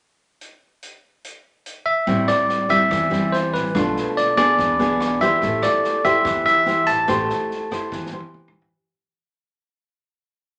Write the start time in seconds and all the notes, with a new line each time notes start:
0.41 closed hi-hat
0.83 closed hi-hat
1.24 closed hi-hat
1.66 closed hi-hat
1.86 E5
2.07 A1 A2 G3 C4 E4, kick, snare
2.28 D5, cross-stick, snare
2.49 snare
2.69 G3 C4 E4 E5, kick, snare
2.90 E2 E3, kick, cross-stick, snare
3.10 E2 G3 C4 E4, snare
3.32 C5, snare
3.54 A1 B4, kick, snare
3.75 B1 B2 A3 D4 F4, kick, cross-stick, snare
3.96 snare
4.17 D5, snare
4.37 B3 D4 G#4 D5, kick, cross-stick, snare
4.58 E2 E3, kick, snare
4.79 B1 B3 D4 G#4, snare
5.00 cross-stick, snare
5.21 E2 E4 G4 C5 E5, kick, snare
5.42 A1 A3, kick, snare
5.62 D5, cross-stick, snare
5.84 snare
6.04 E4 G4 C5 E5, kick, snare
6.25 E2 E3, kick, cross-stick, snare
6.46 E2 E5, snare
6.66 E4 G4 C5, snare
6.87 A1 A5, kick, snare
7.08 A1 A3 E4 G4 C5, kick, cross-stick, snare
7.29 snare
7.51 snare
7.71 E4 G4 C5, kick, cross-stick, snare
7.92 E2 E3, kick, snare
8.06 snare
8.12 E2 E4 G4 C5
8.20 high tom
8.34 mid tom
8.48 mid tom
8.55 A1
8.62 floor tom